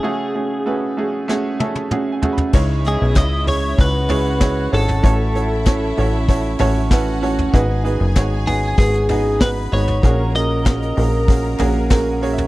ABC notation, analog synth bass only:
X:1
M:4/4
L:1/16
Q:1/4=96
K:C#m
V:1 name="Analog synth bass" clef=bass
z16 | C,,3 B,,, C,,4 C,,6 G,,,2 | A,,,6 A,,,4 A,,,6 | G,,,3 F,,, G,,,4 G,,,6 G,,,2 |
^A,,,6 A,,,4 A,,,6 |]